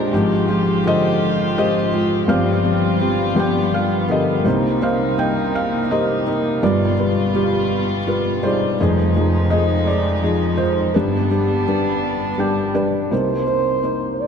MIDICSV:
0, 0, Header, 1, 4, 480
1, 0, Start_track
1, 0, Key_signature, -3, "minor"
1, 0, Tempo, 722022
1, 78, Time_signature, 6, 3, 24, 8
1, 9487, End_track
2, 0, Start_track
2, 0, Title_t, "French horn"
2, 0, Program_c, 0, 60
2, 8723, Note_on_c, 0, 72, 73
2, 9371, Note_off_c, 0, 72, 0
2, 9404, Note_on_c, 0, 72, 57
2, 9446, Note_on_c, 0, 74, 75
2, 9456, Note_off_c, 0, 72, 0
2, 9487, Note_off_c, 0, 74, 0
2, 9487, End_track
3, 0, Start_track
3, 0, Title_t, "Felt piano"
3, 0, Program_c, 1, 0
3, 0, Control_c, 1, 64, 127
3, 0, Note_on_c, 1, 56, 62
3, 0, Note_on_c, 1, 62, 57
3, 0, Note_on_c, 1, 65, 60
3, 0, Note_on_c, 1, 67, 59
3, 0, Note_on_c, 1, 70, 69
3, 0, Note_on_c, 1, 72, 68
3, 72, Note_off_c, 1, 56, 0
3, 82, Note_off_c, 1, 62, 0
3, 82, Note_off_c, 1, 67, 0
3, 82, Note_on_c, 1, 44, 61
3, 82, Note_on_c, 1, 56, 70
3, 83, Note_on_c, 1, 32, 62
3, 85, Note_off_c, 1, 72, 0
3, 87, Control_c, 1, 64, 0
3, 87, Note_on_c, 1, 53, 74
3, 91, Note_off_c, 1, 70, 0
3, 92, Note_on_c, 1, 67, 78
3, 193, Control_c, 1, 64, 127
3, 288, Note_off_c, 1, 56, 0
3, 290, Note_off_c, 1, 53, 0
3, 293, Note_off_c, 1, 67, 0
3, 322, Note_on_c, 1, 53, 65
3, 327, Note_on_c, 1, 56, 57
3, 332, Note_on_c, 1, 67, 70
3, 528, Note_off_c, 1, 53, 0
3, 530, Note_off_c, 1, 56, 0
3, 532, Note_off_c, 1, 67, 0
3, 543, Note_off_c, 1, 65, 0
3, 562, Note_on_c, 1, 53, 64
3, 568, Note_on_c, 1, 56, 56
3, 569, Note_on_c, 1, 50, 70
3, 582, Note_on_c, 1, 72, 68
3, 582, Note_on_c, 1, 75, 104
3, 583, Note_on_c, 1, 67, 65
3, 975, Note_off_c, 1, 53, 0
3, 978, Note_off_c, 1, 56, 0
3, 979, Note_off_c, 1, 50, 0
3, 1041, Note_off_c, 1, 75, 0
3, 1043, Note_off_c, 1, 67, 0
3, 1046, Note_off_c, 1, 72, 0
3, 1048, Note_on_c, 1, 53, 63
3, 1049, Note_on_c, 1, 56, 57
3, 1051, Note_on_c, 1, 75, 91
3, 1053, Note_on_c, 1, 67, 63
3, 1056, Note_on_c, 1, 72, 69
3, 1250, Note_off_c, 1, 53, 0
3, 1250, Note_off_c, 1, 56, 0
3, 1252, Note_off_c, 1, 67, 0
3, 1278, Note_on_c, 1, 53, 57
3, 1286, Note_on_c, 1, 56, 57
3, 1289, Note_on_c, 1, 65, 64
3, 1491, Note_off_c, 1, 44, 0
3, 1492, Note_off_c, 1, 32, 0
3, 1497, Note_off_c, 1, 75, 0
3, 1499, Note_off_c, 1, 72, 0
3, 1505, Note_off_c, 1, 53, 0
3, 1515, Note_on_c, 1, 53, 72
3, 1516, Note_on_c, 1, 43, 60
3, 1516, Note_on_c, 1, 60, 67
3, 1518, Note_on_c, 1, 31, 62
3, 1521, Note_off_c, 1, 56, 0
3, 1522, Note_off_c, 1, 65, 0
3, 1522, Note_on_c, 1, 77, 88
3, 1524, Note_on_c, 1, 67, 76
3, 1524, Note_on_c, 1, 72, 66
3, 1525, Control_c, 1, 64, 0
3, 1530, Note_on_c, 1, 74, 65
3, 1656, Control_c, 1, 64, 127
3, 1724, Note_off_c, 1, 53, 0
3, 1724, Note_off_c, 1, 60, 0
3, 1728, Note_off_c, 1, 67, 0
3, 1751, Note_on_c, 1, 53, 62
3, 1755, Note_on_c, 1, 60, 57
3, 1761, Note_on_c, 1, 67, 69
3, 1962, Note_off_c, 1, 53, 0
3, 1964, Note_off_c, 1, 60, 0
3, 1967, Note_off_c, 1, 67, 0
3, 1992, Note_on_c, 1, 53, 57
3, 1998, Note_on_c, 1, 60, 56
3, 2002, Note_on_c, 1, 67, 68
3, 2211, Note_off_c, 1, 43, 0
3, 2212, Note_off_c, 1, 31, 0
3, 2212, Note_off_c, 1, 53, 0
3, 2215, Note_off_c, 1, 72, 0
3, 2217, Note_off_c, 1, 74, 0
3, 2222, Note_on_c, 1, 53, 68
3, 2224, Note_off_c, 1, 67, 0
3, 2232, Note_on_c, 1, 31, 58
3, 2233, Note_on_c, 1, 43, 55
3, 2234, Note_on_c, 1, 59, 65
3, 2234, Note_on_c, 1, 67, 76
3, 2238, Note_off_c, 1, 60, 0
3, 2247, Control_c, 1, 64, 0
3, 2256, Note_on_c, 1, 79, 85
3, 2258, Note_on_c, 1, 74, 59
3, 2262, Note_off_c, 1, 77, 0
3, 2262, Note_on_c, 1, 71, 61
3, 2378, Control_c, 1, 64, 127
3, 2439, Note_off_c, 1, 53, 0
3, 2444, Note_off_c, 1, 59, 0
3, 2445, Note_off_c, 1, 67, 0
3, 2479, Note_on_c, 1, 53, 57
3, 2483, Note_on_c, 1, 59, 53
3, 2488, Note_on_c, 1, 77, 82
3, 2489, Note_on_c, 1, 67, 68
3, 2494, Note_off_c, 1, 79, 0
3, 2687, Note_off_c, 1, 53, 0
3, 2689, Note_off_c, 1, 59, 0
3, 2692, Note_off_c, 1, 67, 0
3, 2713, Note_on_c, 1, 53, 56
3, 2718, Note_on_c, 1, 59, 53
3, 2724, Note_on_c, 1, 50, 65
3, 2731, Note_off_c, 1, 77, 0
3, 2733, Note_on_c, 1, 75, 83
3, 2742, Note_on_c, 1, 67, 61
3, 2742, Note_on_c, 1, 70, 61
3, 2930, Note_off_c, 1, 31, 0
3, 2930, Note_off_c, 1, 43, 0
3, 2943, Note_off_c, 1, 74, 0
3, 2945, Note_off_c, 1, 71, 0
3, 2955, Note_on_c, 1, 58, 70
3, 2956, Note_off_c, 1, 53, 0
3, 2957, Note_on_c, 1, 36, 60
3, 2958, Note_off_c, 1, 59, 0
3, 2959, Note_on_c, 1, 63, 62
3, 2960, Note_on_c, 1, 48, 59
3, 2962, Note_off_c, 1, 50, 0
3, 2963, Note_on_c, 1, 72, 78
3, 2969, Control_c, 1, 64, 0
3, 3085, Control_c, 1, 64, 127
3, 3165, Note_off_c, 1, 58, 0
3, 3168, Note_off_c, 1, 63, 0
3, 3170, Note_off_c, 1, 72, 0
3, 3199, Note_on_c, 1, 58, 59
3, 3206, Note_on_c, 1, 72, 69
3, 3207, Note_on_c, 1, 63, 59
3, 3211, Note_on_c, 1, 77, 82
3, 3221, Note_off_c, 1, 75, 0
3, 3408, Note_off_c, 1, 58, 0
3, 3411, Note_off_c, 1, 72, 0
3, 3412, Note_off_c, 1, 63, 0
3, 3425, Note_off_c, 1, 67, 0
3, 3425, Note_off_c, 1, 70, 0
3, 3441, Note_on_c, 1, 58, 61
3, 3448, Note_on_c, 1, 63, 53
3, 3449, Note_on_c, 1, 79, 81
3, 3451, Note_on_c, 1, 75, 65
3, 3453, Note_off_c, 1, 77, 0
3, 3692, Note_off_c, 1, 79, 0
3, 3692, Note_on_c, 1, 77, 87
3, 3857, Note_off_c, 1, 58, 0
3, 3861, Note_off_c, 1, 63, 0
3, 3862, Note_off_c, 1, 75, 0
3, 3925, Note_on_c, 1, 58, 64
3, 3929, Note_on_c, 1, 75, 84
3, 3931, Note_on_c, 1, 63, 55
3, 3933, Note_off_c, 1, 77, 0
3, 3936, Note_on_c, 1, 67, 63
3, 3937, Note_on_c, 1, 70, 63
3, 3937, Note_on_c, 1, 72, 70
3, 4131, Note_off_c, 1, 58, 0
3, 4134, Note_off_c, 1, 63, 0
3, 4137, Note_off_c, 1, 72, 0
3, 4163, Note_on_c, 1, 58, 60
3, 4165, Note_off_c, 1, 75, 0
3, 4170, Note_on_c, 1, 63, 55
3, 4175, Note_on_c, 1, 75, 66
3, 4372, Note_off_c, 1, 36, 0
3, 4374, Note_off_c, 1, 48, 0
3, 4382, Note_off_c, 1, 67, 0
3, 4382, Note_off_c, 1, 70, 0
3, 4402, Note_off_c, 1, 58, 0
3, 4404, Note_on_c, 1, 55, 72
3, 4405, Note_off_c, 1, 63, 0
3, 4407, Note_on_c, 1, 31, 61
3, 4407, Note_on_c, 1, 71, 80
3, 4408, Note_off_c, 1, 75, 0
3, 4409, Note_on_c, 1, 43, 61
3, 4410, Control_c, 1, 64, 0
3, 4410, Note_on_c, 1, 65, 64
3, 4410, Note_on_c, 1, 74, 87
3, 4528, Control_c, 1, 64, 127
3, 4610, Note_off_c, 1, 55, 0
3, 4612, Note_off_c, 1, 71, 0
3, 4613, Note_off_c, 1, 65, 0
3, 4646, Note_on_c, 1, 65, 61
3, 4648, Note_on_c, 1, 55, 62
3, 4648, Note_on_c, 1, 71, 69
3, 4851, Note_off_c, 1, 65, 0
3, 4852, Note_off_c, 1, 55, 0
3, 4852, Note_off_c, 1, 71, 0
3, 4884, Note_on_c, 1, 55, 62
3, 4891, Note_on_c, 1, 65, 56
3, 4892, Note_on_c, 1, 67, 66
3, 5298, Note_off_c, 1, 55, 0
3, 5302, Note_off_c, 1, 65, 0
3, 5302, Note_off_c, 1, 67, 0
3, 5367, Note_on_c, 1, 65, 71
3, 5369, Note_on_c, 1, 55, 72
3, 5373, Note_on_c, 1, 71, 78
3, 5571, Note_off_c, 1, 65, 0
3, 5572, Note_off_c, 1, 55, 0
3, 5574, Note_off_c, 1, 71, 0
3, 5606, Note_on_c, 1, 72, 80
3, 5615, Note_on_c, 1, 68, 59
3, 5616, Note_on_c, 1, 55, 64
3, 5619, Note_off_c, 1, 74, 0
3, 5619, Note_on_c, 1, 63, 57
3, 5620, Note_on_c, 1, 65, 57
3, 5629, Note_on_c, 1, 74, 72
3, 5816, Note_off_c, 1, 31, 0
3, 5817, Note_off_c, 1, 43, 0
3, 5847, Note_off_c, 1, 63, 0
3, 5847, Control_c, 1, 64, 0
3, 5848, Note_off_c, 1, 55, 0
3, 5850, Note_off_c, 1, 65, 0
3, 5852, Note_on_c, 1, 53, 74
3, 5853, Note_off_c, 1, 68, 0
3, 5853, Note_on_c, 1, 41, 58
3, 5854, Note_off_c, 1, 74, 0
3, 5856, Note_on_c, 1, 29, 61
3, 5857, Note_on_c, 1, 63, 65
3, 5863, Note_on_c, 1, 68, 79
3, 5953, Control_c, 1, 64, 127
3, 6054, Note_off_c, 1, 53, 0
3, 6056, Note_off_c, 1, 63, 0
3, 6059, Note_off_c, 1, 68, 0
3, 6090, Note_on_c, 1, 53, 66
3, 6093, Note_on_c, 1, 63, 60
3, 6096, Note_on_c, 1, 68, 68
3, 6292, Note_off_c, 1, 53, 0
3, 6294, Note_off_c, 1, 63, 0
3, 6295, Note_off_c, 1, 68, 0
3, 6317, Note_on_c, 1, 75, 81
3, 6324, Note_on_c, 1, 53, 60
3, 6328, Note_on_c, 1, 63, 53
3, 6330, Note_on_c, 1, 68, 69
3, 6343, Note_off_c, 1, 72, 0
3, 6561, Note_on_c, 1, 74, 78
3, 6564, Note_off_c, 1, 75, 0
3, 6566, Note_off_c, 1, 68, 0
3, 6576, Note_on_c, 1, 68, 55
3, 6736, Note_off_c, 1, 53, 0
3, 6738, Note_off_c, 1, 63, 0
3, 6795, Note_off_c, 1, 68, 0
3, 6796, Note_on_c, 1, 53, 63
3, 6803, Note_on_c, 1, 63, 54
3, 6805, Note_on_c, 1, 68, 69
3, 7004, Note_off_c, 1, 53, 0
3, 7008, Note_off_c, 1, 63, 0
3, 7008, Note_off_c, 1, 68, 0
3, 7030, Note_on_c, 1, 72, 76
3, 7037, Note_on_c, 1, 63, 58
3, 7038, Note_on_c, 1, 53, 59
3, 7044, Note_on_c, 1, 65, 65
3, 7052, Note_off_c, 1, 74, 0
3, 7256, Note_off_c, 1, 41, 0
3, 7257, Note_off_c, 1, 29, 0
3, 7273, Note_on_c, 1, 71, 73
3, 7276, Note_off_c, 1, 53, 0
3, 7276, Note_off_c, 1, 63, 0
3, 7280, Note_off_c, 1, 65, 0
3, 7280, Note_off_c, 1, 72, 0
3, 7283, Note_on_c, 1, 62, 67
3, 7284, Note_off_c, 1, 71, 0
3, 7284, Control_c, 1, 64, 0
3, 7285, Note_on_c, 1, 55, 72
3, 7286, Note_on_c, 1, 43, 61
3, 7287, Note_on_c, 1, 67, 52
3, 7288, Note_on_c, 1, 31, 58
3, 7294, Note_on_c, 1, 71, 78
3, 7402, Control_c, 1, 64, 127
3, 7488, Note_off_c, 1, 55, 0
3, 7488, Note_off_c, 1, 62, 0
3, 7493, Note_off_c, 1, 71, 0
3, 7510, Note_off_c, 1, 67, 0
3, 7513, Note_on_c, 1, 55, 65
3, 7520, Note_on_c, 1, 67, 72
3, 7521, Note_on_c, 1, 62, 56
3, 7723, Note_off_c, 1, 55, 0
3, 7726, Note_off_c, 1, 67, 0
3, 7727, Note_off_c, 1, 62, 0
3, 7759, Note_on_c, 1, 55, 63
3, 7765, Note_on_c, 1, 62, 56
3, 7767, Note_on_c, 1, 71, 66
3, 8176, Note_off_c, 1, 55, 0
3, 8178, Note_off_c, 1, 62, 0
3, 8179, Note_off_c, 1, 71, 0
3, 8229, Note_on_c, 1, 55, 69
3, 8237, Note_on_c, 1, 62, 64
3, 8239, Note_on_c, 1, 79, 59
3, 8243, Note_on_c, 1, 67, 78
3, 8442, Note_off_c, 1, 55, 0
3, 8447, Note_off_c, 1, 62, 0
3, 8449, Note_off_c, 1, 67, 0
3, 8463, Note_off_c, 1, 79, 0
3, 8470, Note_on_c, 1, 55, 69
3, 8470, Note_on_c, 1, 62, 64
3, 8474, Note_on_c, 1, 74, 61
3, 8475, Note_on_c, 1, 71, 76
3, 8698, Note_off_c, 1, 43, 0
3, 8699, Note_off_c, 1, 31, 0
3, 8700, Note_off_c, 1, 74, 0
3, 8714, Note_on_c, 1, 48, 51
3, 8716, Note_off_c, 1, 55, 0
3, 8716, Note_off_c, 1, 62, 0
3, 8716, Note_on_c, 1, 36, 47
3, 8718, Note_off_c, 1, 71, 0
3, 8718, Note_on_c, 1, 63, 54
3, 8719, Note_on_c, 1, 58, 61
3, 8724, Note_on_c, 1, 72, 66
3, 8729, Control_c, 1, 64, 0
3, 8858, Control_c, 1, 64, 127
3, 8928, Note_off_c, 1, 63, 0
3, 8929, Note_off_c, 1, 58, 0
3, 8931, Note_off_c, 1, 72, 0
3, 8949, Note_on_c, 1, 58, 54
3, 8954, Note_on_c, 1, 63, 47
3, 8956, Note_on_c, 1, 72, 56
3, 9164, Note_off_c, 1, 58, 0
3, 9167, Note_off_c, 1, 63, 0
3, 9168, Note_off_c, 1, 72, 0
3, 9192, Note_on_c, 1, 58, 51
3, 9196, Note_on_c, 1, 63, 46
3, 9206, Note_on_c, 1, 72, 54
3, 9487, Note_off_c, 1, 36, 0
3, 9487, Note_off_c, 1, 48, 0
3, 9487, Note_off_c, 1, 58, 0
3, 9487, Note_off_c, 1, 63, 0
3, 9487, Note_off_c, 1, 72, 0
3, 9487, End_track
4, 0, Start_track
4, 0, Title_t, "String section"
4, 0, Program_c, 2, 48
4, 0, Note_on_c, 2, 56, 63
4, 81, Note_on_c, 2, 44, 71
4, 82, Note_on_c, 2, 65, 65
4, 83, Note_on_c, 2, 67, 73
4, 1486, Note_off_c, 2, 56, 0
4, 1502, Note_off_c, 2, 44, 0
4, 1503, Note_off_c, 2, 65, 0
4, 1503, Note_on_c, 2, 60, 59
4, 1504, Note_off_c, 2, 67, 0
4, 1507, Note_on_c, 2, 43, 71
4, 1512, Note_on_c, 2, 55, 59
4, 1513, Note_on_c, 2, 65, 75
4, 2223, Note_off_c, 2, 60, 0
4, 2224, Note_off_c, 2, 55, 0
4, 2228, Note_on_c, 2, 59, 62
4, 2232, Note_on_c, 2, 55, 62
4, 2940, Note_off_c, 2, 43, 0
4, 2943, Note_off_c, 2, 65, 0
4, 2947, Note_off_c, 2, 59, 0
4, 2966, Note_on_c, 2, 58, 59
4, 2966, Note_on_c, 2, 63, 75
4, 2970, Note_on_c, 2, 48, 63
4, 4376, Note_off_c, 2, 55, 0
4, 4389, Note_off_c, 2, 58, 0
4, 4389, Note_off_c, 2, 63, 0
4, 4391, Note_off_c, 2, 48, 0
4, 4410, Note_on_c, 2, 65, 74
4, 4416, Note_on_c, 2, 55, 65
4, 4420, Note_on_c, 2, 47, 65
4, 4422, Note_on_c, 2, 43, 67
4, 5830, Note_off_c, 2, 65, 0
4, 5833, Note_off_c, 2, 55, 0
4, 5835, Note_off_c, 2, 47, 0
4, 5836, Note_off_c, 2, 43, 0
4, 5841, Note_on_c, 2, 63, 77
4, 5845, Note_on_c, 2, 53, 62
4, 5845, Note_on_c, 2, 56, 63
4, 5846, Note_on_c, 2, 41, 69
4, 7262, Note_off_c, 2, 63, 0
4, 7264, Note_off_c, 2, 53, 0
4, 7264, Note_off_c, 2, 56, 0
4, 7265, Note_off_c, 2, 41, 0
4, 7281, Note_on_c, 2, 59, 65
4, 7281, Note_on_c, 2, 62, 78
4, 7282, Note_on_c, 2, 55, 64
4, 7283, Note_on_c, 2, 43, 72
4, 8708, Note_off_c, 2, 55, 0
4, 8708, Note_off_c, 2, 59, 0
4, 8708, Note_off_c, 2, 62, 0
4, 8709, Note_off_c, 2, 43, 0
4, 9487, End_track
0, 0, End_of_file